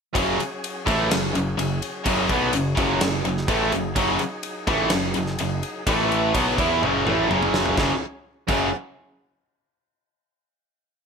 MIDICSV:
0, 0, Header, 1, 8, 480
1, 0, Start_track
1, 0, Tempo, 476569
1, 153, Time_signature, 4, 2, 24, 8
1, 11137, End_track
2, 0, Start_track
2, 0, Title_t, "Tonewheel organ"
2, 0, Program_c, 0, 16
2, 183, Note_on_c, 0, 61, 61
2, 184, Note_on_c, 0, 68, 75
2, 189, Note_on_c, 0, 54, 67
2, 3020, Note_off_c, 0, 61, 0
2, 3022, Note_on_c, 0, 63, 61
2, 5879, Note_off_c, 0, 63, 0
2, 5889, Note_off_c, 0, 68, 0
2, 5891, Note_off_c, 0, 54, 0
2, 5909, Note_on_c, 0, 64, 61
2, 5912, Note_on_c, 0, 57, 65
2, 5915, Note_on_c, 0, 71, 77
2, 6387, Note_off_c, 0, 64, 0
2, 6388, Note_off_c, 0, 57, 0
2, 6390, Note_off_c, 0, 71, 0
2, 6408, Note_on_c, 0, 61, 66
2, 6410, Note_on_c, 0, 68, 77
2, 6416, Note_on_c, 0, 54, 71
2, 7826, Note_off_c, 0, 61, 0
2, 7827, Note_off_c, 0, 68, 0
2, 7830, Note_off_c, 0, 54, 0
2, 7850, Note_on_c, 0, 54, 68
2, 7858, Note_on_c, 0, 61, 57
2, 7861, Note_on_c, 0, 68, 75
2, 8065, Note_off_c, 0, 54, 0
2, 8069, Note_off_c, 0, 61, 0
2, 8071, Note_off_c, 0, 68, 0
2, 11137, End_track
3, 0, Start_track
3, 0, Title_t, "Overdriven electric guitar"
3, 0, Program_c, 1, 29
3, 148, Note_on_c, 1, 42, 103
3, 150, Note_on_c, 1, 49, 96
3, 156, Note_on_c, 1, 54, 96
3, 379, Note_off_c, 1, 42, 0
3, 385, Note_off_c, 1, 49, 0
3, 388, Note_off_c, 1, 54, 0
3, 870, Note_on_c, 1, 45, 86
3, 876, Note_on_c, 1, 52, 92
3, 876, Note_on_c, 1, 57, 98
3, 1105, Note_off_c, 1, 45, 0
3, 1106, Note_on_c, 1, 42, 62
3, 1107, Note_off_c, 1, 52, 0
3, 1108, Note_off_c, 1, 57, 0
3, 1113, Note_on_c, 1, 49, 73
3, 1302, Note_off_c, 1, 42, 0
3, 1305, Note_off_c, 1, 49, 0
3, 1342, Note_on_c, 1, 42, 66
3, 1349, Note_on_c, 1, 49, 66
3, 1540, Note_off_c, 1, 42, 0
3, 1543, Note_off_c, 1, 49, 0
3, 1589, Note_on_c, 1, 42, 71
3, 1597, Note_on_c, 1, 49, 74
3, 1784, Note_off_c, 1, 42, 0
3, 1787, Note_off_c, 1, 49, 0
3, 2080, Note_on_c, 1, 42, 92
3, 2085, Note_on_c, 1, 49, 98
3, 2092, Note_on_c, 1, 54, 113
3, 2303, Note_off_c, 1, 54, 0
3, 2308, Note_off_c, 1, 49, 0
3, 2310, Note_off_c, 1, 42, 0
3, 2312, Note_on_c, 1, 47, 86
3, 2315, Note_on_c, 1, 54, 89
3, 2320, Note_on_c, 1, 59, 86
3, 2546, Note_off_c, 1, 47, 0
3, 2547, Note_off_c, 1, 54, 0
3, 2550, Note_off_c, 1, 59, 0
3, 2563, Note_on_c, 1, 42, 62
3, 2570, Note_on_c, 1, 49, 76
3, 2750, Note_off_c, 1, 42, 0
3, 2754, Note_off_c, 1, 49, 0
3, 2797, Note_on_c, 1, 42, 88
3, 2797, Note_on_c, 1, 49, 95
3, 2807, Note_on_c, 1, 54, 102
3, 3020, Note_off_c, 1, 49, 0
3, 3023, Note_off_c, 1, 42, 0
3, 3032, Note_on_c, 1, 49, 65
3, 3033, Note_off_c, 1, 54, 0
3, 3035, Note_on_c, 1, 42, 61
3, 3225, Note_off_c, 1, 49, 0
3, 3226, Note_off_c, 1, 42, 0
3, 3269, Note_on_c, 1, 42, 70
3, 3276, Note_on_c, 1, 49, 71
3, 3464, Note_off_c, 1, 42, 0
3, 3467, Note_off_c, 1, 49, 0
3, 3509, Note_on_c, 1, 45, 89
3, 3521, Note_on_c, 1, 52, 89
3, 3523, Note_on_c, 1, 57, 90
3, 3744, Note_off_c, 1, 45, 0
3, 3750, Note_off_c, 1, 52, 0
3, 3751, Note_off_c, 1, 57, 0
3, 3758, Note_on_c, 1, 42, 65
3, 3766, Note_on_c, 1, 49, 82
3, 3948, Note_off_c, 1, 42, 0
3, 3952, Note_off_c, 1, 49, 0
3, 3999, Note_on_c, 1, 42, 94
3, 4008, Note_on_c, 1, 49, 99
3, 4012, Note_on_c, 1, 54, 101
3, 4229, Note_off_c, 1, 42, 0
3, 4234, Note_off_c, 1, 49, 0
3, 4236, Note_off_c, 1, 54, 0
3, 4707, Note_on_c, 1, 45, 83
3, 4711, Note_on_c, 1, 52, 100
3, 4716, Note_on_c, 1, 57, 96
3, 4943, Note_off_c, 1, 45, 0
3, 4945, Note_off_c, 1, 52, 0
3, 4948, Note_off_c, 1, 57, 0
3, 4952, Note_on_c, 1, 42, 61
3, 4957, Note_on_c, 1, 49, 63
3, 5145, Note_off_c, 1, 42, 0
3, 5147, Note_off_c, 1, 49, 0
3, 5179, Note_on_c, 1, 42, 60
3, 5189, Note_on_c, 1, 49, 73
3, 5378, Note_off_c, 1, 42, 0
3, 5383, Note_off_c, 1, 49, 0
3, 5443, Note_on_c, 1, 42, 66
3, 5448, Note_on_c, 1, 49, 71
3, 5631, Note_off_c, 1, 42, 0
3, 5633, Note_off_c, 1, 49, 0
3, 5915, Note_on_c, 1, 45, 92
3, 5916, Note_on_c, 1, 52, 97
3, 5924, Note_on_c, 1, 57, 112
3, 6382, Note_off_c, 1, 45, 0
3, 6386, Note_on_c, 1, 47, 83
3, 6388, Note_off_c, 1, 52, 0
3, 6391, Note_off_c, 1, 57, 0
3, 6392, Note_on_c, 1, 54, 92
3, 6399, Note_on_c, 1, 59, 107
3, 6615, Note_off_c, 1, 47, 0
3, 6616, Note_off_c, 1, 59, 0
3, 6619, Note_on_c, 1, 52, 89
3, 6624, Note_off_c, 1, 54, 0
3, 6628, Note_on_c, 1, 59, 86
3, 6630, Note_on_c, 1, 64, 93
3, 6859, Note_off_c, 1, 52, 0
3, 6862, Note_on_c, 1, 42, 83
3, 6864, Note_off_c, 1, 59, 0
3, 6864, Note_off_c, 1, 64, 0
3, 6869, Note_on_c, 1, 49, 89
3, 6876, Note_on_c, 1, 54, 87
3, 7096, Note_off_c, 1, 49, 0
3, 7100, Note_on_c, 1, 45, 85
3, 7101, Note_off_c, 1, 42, 0
3, 7103, Note_off_c, 1, 54, 0
3, 7107, Note_on_c, 1, 52, 109
3, 7114, Note_on_c, 1, 57, 100
3, 7337, Note_on_c, 1, 42, 90
3, 7339, Note_off_c, 1, 45, 0
3, 7343, Note_off_c, 1, 52, 0
3, 7345, Note_on_c, 1, 49, 92
3, 7346, Note_off_c, 1, 57, 0
3, 7347, Note_on_c, 1, 54, 102
3, 7803, Note_off_c, 1, 42, 0
3, 7807, Note_off_c, 1, 49, 0
3, 7815, Note_on_c, 1, 42, 105
3, 7817, Note_off_c, 1, 54, 0
3, 7819, Note_on_c, 1, 49, 105
3, 7829, Note_on_c, 1, 54, 94
3, 7968, Note_off_c, 1, 42, 0
3, 7970, Note_off_c, 1, 49, 0
3, 7975, Note_off_c, 1, 54, 0
3, 8541, Note_on_c, 1, 42, 99
3, 8552, Note_on_c, 1, 49, 101
3, 8554, Note_on_c, 1, 54, 98
3, 8739, Note_off_c, 1, 42, 0
3, 8744, Note_off_c, 1, 49, 0
3, 8745, Note_off_c, 1, 54, 0
3, 11137, End_track
4, 0, Start_track
4, 0, Title_t, "Picked electric bass"
4, 0, Program_c, 2, 34
4, 161, Note_on_c, 2, 30, 98
4, 381, Note_off_c, 2, 30, 0
4, 876, Note_on_c, 2, 33, 97
4, 1098, Note_off_c, 2, 33, 0
4, 1121, Note_on_c, 2, 30, 84
4, 1341, Note_off_c, 2, 30, 0
4, 1354, Note_on_c, 2, 30, 86
4, 1577, Note_off_c, 2, 30, 0
4, 1588, Note_on_c, 2, 30, 87
4, 1814, Note_off_c, 2, 30, 0
4, 2076, Note_on_c, 2, 30, 101
4, 2298, Note_off_c, 2, 30, 0
4, 2314, Note_on_c, 2, 35, 97
4, 2537, Note_off_c, 2, 35, 0
4, 2550, Note_on_c, 2, 30, 80
4, 2775, Note_off_c, 2, 30, 0
4, 2791, Note_on_c, 2, 30, 100
4, 3016, Note_off_c, 2, 30, 0
4, 3035, Note_on_c, 2, 30, 88
4, 3258, Note_off_c, 2, 30, 0
4, 3273, Note_on_c, 2, 30, 84
4, 3497, Note_off_c, 2, 30, 0
4, 3506, Note_on_c, 2, 33, 103
4, 3733, Note_off_c, 2, 33, 0
4, 3750, Note_on_c, 2, 30, 79
4, 3975, Note_off_c, 2, 30, 0
4, 3991, Note_on_c, 2, 30, 96
4, 4215, Note_off_c, 2, 30, 0
4, 4709, Note_on_c, 2, 33, 106
4, 4935, Note_off_c, 2, 33, 0
4, 4964, Note_on_c, 2, 30, 88
4, 5182, Note_off_c, 2, 30, 0
4, 5208, Note_on_c, 2, 30, 85
4, 5425, Note_off_c, 2, 30, 0
4, 5451, Note_on_c, 2, 30, 83
4, 5666, Note_off_c, 2, 30, 0
4, 5917, Note_on_c, 2, 33, 104
4, 6362, Note_off_c, 2, 33, 0
4, 6391, Note_on_c, 2, 35, 94
4, 6615, Note_off_c, 2, 35, 0
4, 6630, Note_on_c, 2, 40, 105
4, 6855, Note_off_c, 2, 40, 0
4, 6875, Note_on_c, 2, 30, 96
4, 7097, Note_off_c, 2, 30, 0
4, 7122, Note_on_c, 2, 33, 95
4, 7341, Note_off_c, 2, 33, 0
4, 7359, Note_on_c, 2, 30, 91
4, 7803, Note_off_c, 2, 30, 0
4, 7831, Note_on_c, 2, 30, 97
4, 7966, Note_off_c, 2, 30, 0
4, 8551, Note_on_c, 2, 30, 104
4, 8775, Note_off_c, 2, 30, 0
4, 11137, End_track
5, 0, Start_track
5, 0, Title_t, "Muted distorted electric guitar strokes"
5, 408, Note_on_c, 9, 29, 56
5, 509, Note_off_c, 9, 29, 0
5, 4231, Note_on_c, 9, 29, 54
5, 4331, Note_off_c, 9, 29, 0
5, 11137, End_track
6, 0, Start_track
6, 0, Title_t, "Muted overdriven electric guitar strokes"
6, 391, Note_on_c, 9, 29, 55
6, 492, Note_off_c, 9, 29, 0
6, 4245, Note_on_c, 9, 29, 58
6, 4346, Note_off_c, 9, 29, 0
6, 11137, End_track
7, 0, Start_track
7, 0, Title_t, "Muted picked electric bass strokes"
7, 403, Note_on_c, 9, 29, 41
7, 503, Note_off_c, 9, 29, 0
7, 11137, End_track
8, 0, Start_track
8, 0, Title_t, "Drums"
8, 153, Note_on_c, 9, 36, 109
8, 158, Note_on_c, 9, 51, 103
8, 254, Note_off_c, 9, 36, 0
8, 259, Note_off_c, 9, 51, 0
8, 405, Note_on_c, 9, 51, 70
8, 506, Note_off_c, 9, 51, 0
8, 645, Note_on_c, 9, 51, 99
8, 745, Note_off_c, 9, 51, 0
8, 875, Note_on_c, 9, 36, 102
8, 885, Note_on_c, 9, 51, 72
8, 976, Note_off_c, 9, 36, 0
8, 985, Note_off_c, 9, 51, 0
8, 1120, Note_on_c, 9, 51, 113
8, 1124, Note_on_c, 9, 38, 111
8, 1221, Note_off_c, 9, 51, 0
8, 1225, Note_off_c, 9, 38, 0
8, 1361, Note_on_c, 9, 51, 80
8, 1462, Note_off_c, 9, 51, 0
8, 1600, Note_on_c, 9, 51, 106
8, 1701, Note_off_c, 9, 51, 0
8, 1835, Note_on_c, 9, 51, 81
8, 1936, Note_off_c, 9, 51, 0
8, 2071, Note_on_c, 9, 51, 108
8, 2073, Note_on_c, 9, 36, 112
8, 2171, Note_off_c, 9, 51, 0
8, 2173, Note_off_c, 9, 36, 0
8, 2309, Note_on_c, 9, 51, 72
8, 2311, Note_on_c, 9, 36, 103
8, 2410, Note_off_c, 9, 51, 0
8, 2412, Note_off_c, 9, 36, 0
8, 2547, Note_on_c, 9, 51, 91
8, 2647, Note_off_c, 9, 51, 0
8, 2792, Note_on_c, 9, 36, 110
8, 2795, Note_on_c, 9, 51, 69
8, 2893, Note_off_c, 9, 36, 0
8, 2896, Note_off_c, 9, 51, 0
8, 3030, Note_on_c, 9, 51, 102
8, 3034, Note_on_c, 9, 38, 121
8, 3131, Note_off_c, 9, 51, 0
8, 3135, Note_off_c, 9, 38, 0
8, 3272, Note_on_c, 9, 51, 68
8, 3373, Note_off_c, 9, 51, 0
8, 3398, Note_on_c, 9, 38, 33
8, 3498, Note_off_c, 9, 38, 0
8, 3506, Note_on_c, 9, 51, 88
8, 3507, Note_on_c, 9, 36, 107
8, 3607, Note_off_c, 9, 51, 0
8, 3608, Note_off_c, 9, 36, 0
8, 3748, Note_on_c, 9, 51, 67
8, 3849, Note_off_c, 9, 51, 0
8, 3988, Note_on_c, 9, 36, 112
8, 3988, Note_on_c, 9, 51, 97
8, 4088, Note_off_c, 9, 36, 0
8, 4089, Note_off_c, 9, 51, 0
8, 4220, Note_on_c, 9, 51, 67
8, 4321, Note_off_c, 9, 51, 0
8, 4462, Note_on_c, 9, 51, 88
8, 4562, Note_off_c, 9, 51, 0
8, 4707, Note_on_c, 9, 36, 111
8, 4708, Note_on_c, 9, 51, 73
8, 4807, Note_off_c, 9, 36, 0
8, 4809, Note_off_c, 9, 51, 0
8, 4933, Note_on_c, 9, 51, 102
8, 4937, Note_on_c, 9, 38, 115
8, 5034, Note_off_c, 9, 51, 0
8, 5038, Note_off_c, 9, 38, 0
8, 5176, Note_on_c, 9, 51, 79
8, 5277, Note_off_c, 9, 51, 0
8, 5304, Note_on_c, 9, 38, 35
8, 5405, Note_off_c, 9, 38, 0
8, 5424, Note_on_c, 9, 51, 100
8, 5525, Note_off_c, 9, 51, 0
8, 5669, Note_on_c, 9, 51, 76
8, 5770, Note_off_c, 9, 51, 0
8, 5909, Note_on_c, 9, 36, 119
8, 5909, Note_on_c, 9, 51, 100
8, 6010, Note_off_c, 9, 36, 0
8, 6010, Note_off_c, 9, 51, 0
8, 6161, Note_on_c, 9, 51, 70
8, 6262, Note_off_c, 9, 51, 0
8, 6391, Note_on_c, 9, 36, 94
8, 6391, Note_on_c, 9, 51, 100
8, 6492, Note_off_c, 9, 36, 0
8, 6492, Note_off_c, 9, 51, 0
8, 6631, Note_on_c, 9, 36, 103
8, 6632, Note_on_c, 9, 51, 70
8, 6732, Note_off_c, 9, 36, 0
8, 6733, Note_off_c, 9, 51, 0
8, 6880, Note_on_c, 9, 48, 67
8, 6981, Note_off_c, 9, 48, 0
8, 7118, Note_on_c, 9, 47, 77
8, 7219, Note_off_c, 9, 47, 0
8, 7361, Note_on_c, 9, 45, 90
8, 7461, Note_off_c, 9, 45, 0
8, 7479, Note_on_c, 9, 45, 84
8, 7580, Note_off_c, 9, 45, 0
8, 7594, Note_on_c, 9, 38, 100
8, 7695, Note_off_c, 9, 38, 0
8, 7711, Note_on_c, 9, 43, 87
8, 7812, Note_off_c, 9, 43, 0
8, 7831, Note_on_c, 9, 36, 117
8, 7835, Note_on_c, 9, 38, 96
8, 7932, Note_off_c, 9, 36, 0
8, 7936, Note_off_c, 9, 38, 0
8, 8544, Note_on_c, 9, 49, 83
8, 8547, Note_on_c, 9, 36, 101
8, 8644, Note_off_c, 9, 49, 0
8, 8648, Note_off_c, 9, 36, 0
8, 11137, End_track
0, 0, End_of_file